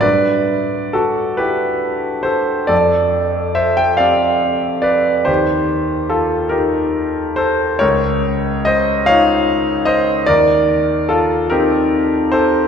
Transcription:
0.01 2.66 G2 soft
0.01 0.91 B4 medium
0.01 0.94 D5 medium
0.93 1.36 F#4 soft
0.93 1.39 A4 medium
1.37 2.66 E4 soft
1.37 2.22 G4 soft
1.37 2.26 B4 medium
2.23 2.66 A4 medium
2.23 2.69 C5 medium
2.67 5.24 F2 soft
2.67 3.53 A4 medium
2.67 3.56 D5 medium
3.55 3.77 C5 medium
3.55 3.76 E5 medium
3.77 3.99 E5 medium
3.77 4.00 G5 medium
3.97 5.23 C4 soft
3.97 5.23 G4 soft
3.97 4.80 D5 medium
3.97 4.85 F5 medium
4.82 5.24 B4 medium
4.82 5.26 D5 medium
5.25 7.77 D#2 soft
5.25 6.06 G4 medium
5.25 6.09 C5 medium
6.09 6.50 F4 medium
6.09 6.52 A4 medium
6.49 7.77 D#4 soft
6.49 7.34 G4 soft
6.49 7.37 A#4 medium
7.36 7.78 A4 medium
7.36 7.81 C5 medium
7.79 10.23 C#2 soft
7.79 8.61 A#4 medium
7.79 8.65 C#5 medium
8.65 9.04 C5 medium
8.65 9.06 D#5 medium
9.06 10.25 D#4 soft
9.06 10.25 F4 soft
9.06 9.83 C#5 medium
9.06 9.87 F5 medium
9.85 10.25 C5 medium
9.85 10.27 D#5 medium
10.26 12.68 D#2 medium
10.26 11.07 A#4 medium
10.26 11.10 D5 medium
11.09 11.49 F4 medium
11.09 11.51 A4 medium
11.50 12.68 C4 soft
11.50 12.68 D#4 soft
11.50 12.29 G4 medium
11.50 12.32 A#4 medium
12.32 12.68 A4 medium
12.32 12.68 C5 medium

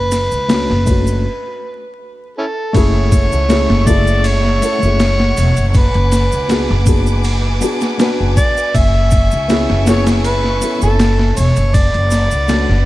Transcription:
0.00 0.27 F#1 medium
0.00 2.00 B4 loud
0.11 snare soft
0.11 ride medium
0.11 shaker medium
0.31 0.65 C#2 medium
0.31 shaker soft
0.48 0.70 A3 medium
0.48 0.71 C#4 medium
0.48 0.72 D4 medium
0.48 0.72 F#4 medium
0.48 snare loud
0.48 ride medium
0.48 shaker soft
0.70 1.25 F#1 medium
0.70 snare soft
0.86 1.24 A3 medium
0.86 1.24 C#4 medium
0.86 1.25 D4 medium
0.86 1.25 F#4 medium
0.86 kick medium
0.86 ride medium
0.86 shaker medium
1.07 shaker soft
2.38 2.46 C#4 medium
2.38 2.45 E4 medium
2.38 2.77 A4 medium
2.73 3.28 F#1 medium
2.73 3.42 A3 loud
2.73 5.71 A3 medium
2.73 3.42 C#4 loud
2.73 3.43 E4 loud
2.73 3.43 G#4 loud
2.73 3.89 C#5 loud
2.73 5.71 E5 medium
2.73 8.70 F#5 medium
2.73 5.71 C#6 medium
2.73 kick loud
2.73 ride medium
2.73 shaker soft
3.12 kick medium
3.12 ride medium
3.12 shaker medium
3.32 3.65 C#2 medium
3.32 shaker medium
3.49 3.82 A3 loud
3.49 3.83 C#4 medium
3.49 3.83 E4 medium
3.49 3.84 G#4 loud
3.49 snare loud
3.49 ride medium
3.49 shaker soft
3.70 4.59 F#1 medium
3.70 snare medium
3.86 4.58 C#3 medium
3.86 4.57 A3 medium
3.86 4.58 E4 medium
3.86 4.59 G#4 loud
3.86 4.27 D5 loud
3.86 kick loud
3.86 ride medium
3.86 shaker medium
4.07 shaker medium
4.24 5.68 C#5 loud
4.24 ride medium
4.24 shaker soft
4.45 snare soft
4.61 4.76 A3 medium
4.61 4.77 C#4 medium
4.61 4.77 E4 medium
4.61 4.78 A4 medium
4.61 ride medium
4.61 shaker medium
4.78 5.71 A3 medium
4.78 5.72 C#4 medium
4.78 shaker soft
4.83 5.34 F#1 medium
4.83 5.73 E4 medium
4.83 5.74 G#4 medium
5.00 snare loud
5.00 ride medium
5.00 shaker soft
5.20 snare medium
5.37 5.55 E1 medium
5.37 ride medium
5.37 shaker medium
5.57 5.90 F#1 medium
5.57 ride soft
5.57 shaker soft
5.69 5.78 C#5 medium
5.74 8.71 B4 medium
5.74 6.88 B4 loud
5.74 11.70 G#5 medium
5.74 8.71 D6 medium
5.74 kick loud
5.74 ride medium
5.74 shaker soft
5.94 6.27 F#1 medium
5.94 ride soft
6.12 snare medium
6.12 ride medium
6.12 shaker medium
6.32 6.65 C#2 medium
6.32 shaker medium
6.48 6.70 B3 medium
6.48 6.71 D4 medium
6.48 6.71 F#4 medium
6.48 6.72 G#4 medium
6.48 snare loud
6.48 ride medium
6.48 shaker soft
6.69 7.59 F#1 medium
6.69 snare soft
6.85 7.57 B3 medium
6.85 7.57 D4 medium
6.85 7.58 F#4 medium
6.85 7.59 G#4 medium
6.85 kick medium
6.85 ride medium
6.85 shaker medium
7.07 shaker medium
7.24 ride medium
7.24 shaker soft
7.60 7.94 B3 medium
7.60 7.95 D4 medium
7.60 7.95 F#4 medium
7.60 7.96 G#4 medium
7.60 ride medium
7.60 shaker loud
7.81 snare medium
7.81 shaker medium
7.98 8.71 B3 medium
7.98 8.72 D4 medium
7.98 8.73 F#4 medium
7.98 8.73 B4 loud
7.98 snare loud
7.98 ride medium
7.98 shaker soft
8.20 8.35 F#1 medium
8.37 8.77 D5 loud
8.37 kick loud
8.37 ride medium
8.37 shaker medium
8.57 shaker medium
8.75 9.28 F#1 medium
8.75 11.72 A3 medium
8.75 11.72 E5 medium
8.75 9.88 E5 loud
8.75 11.72 C#6 medium
8.75 kick loud
8.75 ride medium
8.75 shaker soft
9.11 kick medium
9.11 ride medium
9.11 shaker medium
9.31 9.65 C#2 medium
9.31 shaker soft
9.48 9.82 B3 medium
9.48 9.82 C#4 medium
9.48 9.83 E4 medium
9.48 9.84 G#4 loud
9.48 snare loud
9.48 ride medium
9.48 shaker soft
9.70 10.59 F#1 medium
9.70 snare medium
9.86 10.57 B3 medium
9.86 10.58 C#4 medium
9.86 10.58 E4 medium
9.86 10.59 G#4 loud
9.86 10.05 C#5 loud
9.86 snare loud
9.86 ride medium
9.86 shaker medium
10.07 snare loud
10.07 ride medium
10.07 shaker medium
10.24 10.78 B4 loud
10.24 ride medium
10.24 shaker soft
10.44 snare soft
10.61 10.76 B3 medium
10.61 10.77 C#4 medium
10.61 10.77 E4 medium
10.61 10.78 A4 medium
10.61 ride medium
10.61 shaker loud
10.79 11.71 B3 medium
10.79 11.72 C#4 medium
10.79 shaker medium
10.83 11.34 F#1 medium
10.83 11.73 E4 medium
10.83 11.39 A4 medium
10.83 11.74 A4 medium
10.99 snare loud
10.99 ride medium
10.99 shaker soft
11.19 snare medium
11.37 11.55 E1 medium
11.37 11.77 C#5 loud
11.37 ride medium
11.37 shaker medium
11.56 11.90 F#1 medium
11.56 ride soft
11.56 shaker medium
11.74 12.85 B4 medium
11.74 12.85 D5 loud
11.74 12.85 F#5 medium
11.74 kick loud
11.74 ride medium
11.74 shaker soft
11.94 12.27 F#1 medium
11.94 ride soft
12.11 snare medium
12.11 ride medium
12.11 shaker loud
12.31 12.65 C#2 medium
12.31 shaker medium
12.48 12.70 A3 medium
12.48 12.71 C#4 medium
12.48 12.72 D4 medium
12.48 12.72 F#4 medium
12.48 snare loud
12.48 ride medium
12.48 shaker soft
12.69 12.85 F#1 medium
12.69 snare soft

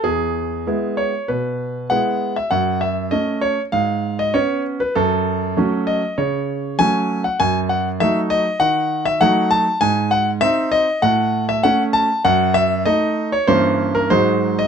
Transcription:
0.04 0.65 E2 soft
0.04 0.97 G#4 medium
0.67 1.11 G#3 soft
0.67 1.12 B3 soft
0.67 1.12 E4 soft
0.97 1.28 C#5 medium
1.28 1.93 B2 soft
1.28 1.86 B4 medium
1.90 2.34 G#3 soft
1.90 2.35 B3 soft
1.90 2.35 E4 soft
1.90 2.36 F#5 medium
2.36 2.52 E5 medium
2.51 3.10 F#2 soft
2.51 2.81 F#5 medium
2.81 3.12 E5 medium
3.11 3.56 A3 soft
3.11 3.56 C#4 soft
3.11 3.39 D#5 medium
3.41 3.60 C#5 medium
3.72 4.33 G#2 soft
3.72 4.19 F5 medium
4.19 4.35 D#5 medium
4.34 4.78 B3 soft
4.34 4.79 C#4 soft
4.34 4.62 C#5 medium
4.80 4.96 B4 medium
4.95 5.55 F#2 medium
4.95 5.87 A4 medium
5.57 6.01 F#3 soft
5.57 6.01 A3 soft
5.57 6.01 C#4 soft
5.87 6.18 D#5 medium
6.18 6.82 C#3 soft
6.18 6.75 C#5 medium
6.79 7.23 F#3 soft
6.79 7.23 A3 soft
6.79 7.23 C#4 soft
6.79 7.21 G#5 medium
7.24 7.40 F#5 medium
7.40 7.99 F#2 medium
7.40 7.58 G#5 medium
7.69 7.88 F#5 medium
8.00 8.44 F#3 soft
8.00 8.44 A3 soft
8.00 8.44 D#4 soft
8.00 8.18 E5 medium
8.30 8.57 D#5 medium
8.60 9.24 D#3 soft
8.60 9.05 F#5 medium
9.05 9.21 E5 medium
9.21 9.64 F#3 soft
9.21 9.65 A3 soft
9.21 9.65 D#4 soft
9.21 9.48 F#5 medium
9.51 9.81 A5 medium
9.81 10.40 G#2 medium
9.81 10.11 G#5 medium
10.11 10.29 F#5 medium
10.41 10.85 C4 soft
10.41 10.85 D#4 soft
10.41 10.68 E5 medium
10.72 11.02 D#5 medium
11.02 11.62 A2 medium
11.02 11.44 F#5 medium
11.49 11.64 E5 medium
11.63 12.08 A3 soft
11.63 12.08 C#4 soft
11.63 11.82 F#5 medium
11.93 12.21 A5 medium
12.25 12.84 F#2 medium
12.25 12.55 F#5 medium
12.54 12.82 E5 medium
12.85 13.30 A3 soft
12.85 13.31 D#4 soft
12.85 13.28 D#5 medium
13.32 13.48 C#5 medium
13.47 14.09 G2 medium
13.47 14.07 E3 soft
13.47 14.07 A#3 soft
13.47 14.07 C#4 soft
13.47 13.94 C5 medium
13.95 14.10 A#4 medium
14.10 14.68 G#2 medium
14.10 14.68 F#3 soft
14.10 14.68 G#3 soft
14.10 14.68 D#4 soft
14.10 14.58 C5 medium
14.59 14.68 D#5 medium

